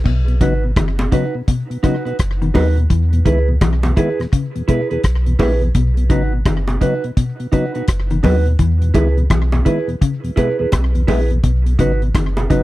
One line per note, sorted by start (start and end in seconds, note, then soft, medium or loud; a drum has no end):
0.05 0.43 B1 loud
0.05 0.19 B2 medium
0.05 kick loud
0.05 crash medium
0.28 0.35 B2 medium
0.28 closed hi-hat medium
0.41 0.73 G#1 medium
0.41 0.54 C#3 medium
0.41 0.54 F#3 medium
0.41 0.54 B3 medium
0.41 0.62 D#4 medium
0.41 0.54 D#4 medium
0.41 0.63 F#4 medium
0.41 0.63 B4 medium
0.41 kick loud
0.41 closed hi-hat medium
0.64 0.71 B2 medium
0.76 1.09 F#1 loud
0.76 0.90 D#3 medium
0.76 kick loud
0.76 cross-stick loud
0.76 closed hi-hat medium
0.76 high bongo medium
0.99 1.07 B2 medium
0.99 closed hi-hat soft
0.99 high bongo medium
1.12 1.25 C#3 medium
1.12 1.25 F#3 medium
1.12 1.25 B3 medium
1.12 1.33 D#4 medium
1.12 1.25 D#4 medium
1.12 1.34 F#4 medium
1.12 1.34 B4 loud
1.12 kick loud
1.12 closed hi-hat medium
1.35 1.42 B2 medium
1.48 1.61 B2 medium
1.48 kick loud
1.48 closed hi-hat medium
1.70 1.78 B2 medium
1.70 closed hi-hat soft
1.83 1.96 C#3 medium
1.83 1.96 F#3 medium
1.83 1.96 B3 medium
1.83 2.04 D#4 medium
1.83 1.96 D#4 medium
1.83 2.05 F#4 medium
1.83 2.04 B4 medium
1.83 kick medium
1.83 cross-stick medium
1.83 closed hi-hat medium
2.05 2.13 B2 medium
2.05 2.16 D#4 medium
2.05 2.16 F#4 medium
2.05 2.15 B4 medium
2.05 closed hi-hat soft
2.19 2.52 F#1 loud
2.19 kick loud
2.19 cross-stick loud
2.19 closed hi-hat loud
2.42 2.49 B2 medium
2.42 2.49 D#3 medium
2.42 closed hi-hat soft
2.54 2.87 D#2 loud
2.54 2.67 F#3 medium
2.54 2.68 F#3 medium
2.54 2.67 B3 medium
2.54 2.76 D#4 medium
2.54 2.67 D#4 medium
2.54 2.76 F#4 medium
2.54 2.76 B4 loud
2.54 kick medium
2.54 open hi-hat medium
2.54 high bongo medium
2.54 low bongo medium
2.77 2.84 B2 medium
2.77 closed hi-hat soft
2.90 3.23 E2 loud
2.90 3.03 E3 medium
2.90 kick loud
2.90 closed hi-hat medium
3.13 3.20 E2 medium
3.13 3.20 B2 medium
3.13 closed hi-hat medium
3.25 3.58 C#2 medium
3.25 3.39 D#3 medium
3.25 3.39 G#3 medium
3.25 3.39 B3 medium
3.25 3.47 E4 medium
3.25 3.39 E4 medium
3.25 3.47 G#4 medium
3.25 3.48 B4 medium
3.25 kick loud
3.25 closed hi-hat medium
3.48 3.56 E2 medium
3.48 3.56 B2 medium
3.61 3.94 B1 medium
3.61 3.74 E3 medium
3.61 kick loud
3.61 cross-stick loud
3.61 closed hi-hat medium
3.61 high bongo medium
3.83 3.92 E2 medium
3.83 3.91 B2 medium
3.83 closed hi-hat soft
3.83 high bongo medium
3.96 4.10 D#3 medium
3.96 4.09 G#3 medium
3.96 4.09 B3 medium
3.96 4.10 E4 medium
3.96 4.18 E4 medium
3.96 4.18 G#4 loud
3.96 4.19 B4 medium
3.96 kick loud
3.96 closed hi-hat medium
4.19 4.27 E2 medium
4.19 4.27 B2 medium
4.19 cross-stick medium
4.19 closed hi-hat soft
4.33 4.46 C#3 medium
4.33 kick loud
4.33 closed hi-hat loud
4.56 4.63 E2 medium
4.56 4.63 B2 medium
4.56 closed hi-hat soft
4.68 4.81 B2 medium
4.68 4.81 G#3 medium
4.68 4.81 B3 medium
4.68 4.89 E4 medium
4.68 4.81 E4 medium
4.68 4.90 G#4 medium
4.68 4.89 B4 medium
4.68 kick medium
4.68 closed hi-hat medium
4.90 4.98 E2 medium
4.90 4.98 B2 medium
4.90 5.01 E4 medium
4.90 5.00 G#4 medium
4.90 5.00 B4 medium
4.90 closed hi-hat soft
5.04 5.36 B1 medium
5.04 kick loud
5.04 cross-stick loud
5.04 closed hi-hat loud
5.26 5.34 E2 medium
5.26 5.34 B2 medium
5.26 closed hi-hat soft
5.39 5.72 A#1 medium
5.39 5.52 G#3 medium
5.39 5.52 B3 medium
5.39 5.60 E4 medium
5.39 5.52 E4 medium
5.39 5.61 G#4 medium
5.39 5.61 B4 loud
5.39 kick loud
5.39 open hi-hat medium
5.39 high bongo medium
5.39 low bongo medium
5.62 5.69 E2 medium
5.62 5.69 B2 medium
5.62 closed hi-hat soft
5.75 6.12 B1 loud
5.75 5.88 B2 medium
5.75 kick loud
5.75 closed hi-hat medium
5.97 6.05 B2 medium
5.97 closed hi-hat medium
6.09 6.43 G#1 medium
6.09 6.24 C#3 medium
6.09 6.23 F#3 medium
6.09 6.23 B3 medium
6.09 6.31 D#4 medium
6.09 6.23 D#4 medium
6.09 6.32 F#4 loud
6.09 6.32 B4 medium
6.09 kick loud
6.09 closed hi-hat medium
6.33 6.40 B2 medium
6.46 6.78 F#1 loud
6.46 6.59 D#3 medium
6.46 kick loud
6.46 cross-stick loud
6.46 closed hi-hat medium
6.46 high bongo medium
6.68 6.76 B2 medium
6.68 closed hi-hat soft
6.68 high bongo medium
6.81 6.95 C#3 medium
6.81 6.94 F#3 medium
6.81 6.94 B3 medium
6.81 7.02 D#4 medium
6.81 6.95 D#4 medium
6.81 7.03 F#4 medium
6.81 7.03 B4 loud
6.81 kick medium
6.81 closed hi-hat medium
7.04 7.12 B2 medium
7.04 closed hi-hat soft
7.17 7.30 B2 medium
7.17 kick loud
7.17 closed hi-hat medium
7.40 7.47 B2 medium
7.40 closed hi-hat soft
7.52 7.66 C#3 medium
7.52 7.65 F#3 medium
7.52 7.65 B3 medium
7.52 7.73 D#4 medium
7.52 7.66 D#4 medium
7.52 7.74 F#4 medium
7.52 7.73 B4 medium
7.52 kick loud
7.52 closed hi-hat medium
7.74 7.83 B2 medium
7.74 7.85 D#4 medium
7.74 7.85 F#4 medium
7.74 7.84 B4 medium
7.74 closed hi-hat soft
7.88 8.21 F#1 loud
7.88 kick loud
7.88 cross-stick loud
7.88 closed hi-hat loud
8.10 8.18 B2 medium
8.10 8.18 D#3 medium
8.10 closed hi-hat medium
8.23 8.56 D#2 loud
8.23 8.36 F#3 medium
8.23 8.37 F#3 medium
8.23 8.36 B3 medium
8.23 8.45 D#4 medium
8.23 8.36 D#4 medium
8.23 8.45 F#4 medium
8.23 8.45 B4 medium
8.23 kick loud
8.23 open hi-hat medium
8.23 high bongo medium
8.23 low bongo medium
8.46 8.53 B2 medium
8.46 closed hi-hat soft
8.59 8.92 E2 loud
8.59 8.72 E3 medium
8.59 kick loud
8.59 closed hi-hat medium
8.82 8.89 E2 medium
8.82 8.89 B2 medium
8.82 closed hi-hat medium
8.94 9.27 C#2 medium
8.94 9.08 D#3 medium
8.94 9.07 G#3 medium
8.94 9.08 B3 medium
8.94 9.16 E4 medium
8.94 9.08 E4 medium
8.94 9.16 G#4 medium
8.94 9.16 B4 medium
8.94 kick loud
8.94 closed hi-hat medium
8.94 high bongo medium
9.17 9.25 E2 medium
9.17 9.25 B2 medium
9.17 closed hi-hat soft
9.30 9.63 B1 loud
9.30 9.43 E3 medium
9.30 kick loud
9.30 cross-stick loud
9.30 closed hi-hat medium
9.30 high bongo medium
9.52 9.60 E2 medium
9.52 9.60 B2 medium
9.52 closed hi-hat soft
9.52 high bongo medium
9.65 9.79 D#3 medium
9.65 9.78 G#3 medium
9.65 9.78 B3 medium
9.65 9.87 E4 medium
9.65 9.79 E4 medium
9.65 9.87 G#4 medium
9.65 9.88 B4 medium
9.65 kick medium
9.65 closed hi-hat medium
9.88 9.96 E2 medium
9.88 9.96 B2 medium
9.88 closed hi-hat soft
10.01 10.14 C#3 medium
10.01 kick loud
10.01 closed hi-hat medium
10.24 10.31 E2 medium
10.24 10.31 B2 medium
10.24 closed hi-hat medium
10.36 10.50 B2 medium
10.36 10.49 G#3 medium
10.36 10.50 B3 medium
10.36 10.58 E4 medium
10.36 10.50 E4 medium
10.36 10.58 G#4 medium
10.36 10.58 B4 loud
10.36 kick medium
10.36 closed hi-hat medium
10.36 high bongo medium
10.59 10.67 E2 medium
10.59 10.67 B2 medium
10.59 10.70 E4 medium
10.59 10.69 G#4 medium
10.59 10.69 B4 medium
10.72 11.05 B1 loud
10.72 kick loud
10.72 cross-stick loud
10.72 closed hi-hat loud
10.72 high bongo medium
10.95 11.02 E2 medium
10.95 11.02 B2 medium
10.95 closed hi-hat soft
11.07 11.41 A#1 medium
11.07 11.21 G#3 medium
11.07 11.21 B3 medium
11.07 11.29 E4 medium
11.07 11.21 E4 medium
11.07 11.29 G#4 medium
11.07 11.30 B4 medium
11.07 kick medium
11.07 open hi-hat medium
11.07 high bongo medium
11.07 low bongo medium
11.30 11.38 E2 medium
11.30 11.38 B2 medium
11.30 closed hi-hat soft
11.43 11.76 B1 loud
11.43 11.57 B2 medium
11.43 kick loud
11.43 closed hi-hat medium
11.66 11.74 B2 medium
11.66 closed hi-hat medium
11.79 12.12 G#1 loud
11.79 11.92 C#3 medium
11.79 11.92 F#3 medium
11.79 11.92 B3 medium
11.79 12.00 D#4 medium
11.79 11.92 D#4 medium
11.79 12.01 F#4 medium
11.79 12.01 B4 medium
11.79 kick loud
11.79 closed hi-hat medium
12.02 12.09 B2 medium
12.02 closed hi-hat soft
12.15 12.47 F#1 loud
12.15 12.28 D#3 medium
12.15 kick loud
12.15 cross-stick loud
12.15 closed hi-hat medium
12.15 high bongo medium
12.37 12.45 B2 medium
12.37 closed hi-hat soft
12.37 high bongo medium
12.50 12.63 F#1 medium
12.50 12.63 C#3 medium
12.50 12.63 F#3 medium
12.50 12.63 B3 medium
12.50 12.63 D#4 loud
12.50 12.63 D#4 medium
12.50 12.63 F#4 medium
12.50 12.63 B4 medium
12.50 kick loud
12.50 closed hi-hat medium